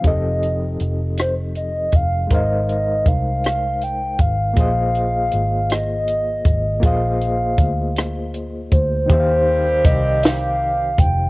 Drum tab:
HH |xxxxxx|xxxxxx|xxxxxx|xxxxxx|
SD |---r--|---r--|---r--|---r--|
BD |o----o|o-o--o|o----o|o-o--o|

HH |x-xx-x|
SD |---o--|
BD |o-o--o|